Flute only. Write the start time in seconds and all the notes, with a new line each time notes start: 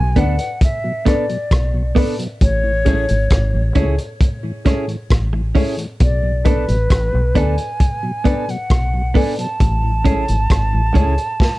Already playing: G#5
0.19 F#5
0.64 E5
1.08 D5
2.43 C#5
6.03 D5
6.48 B4
7.38 G#5
8.51 F#5
9.17 G#5
9.39 A5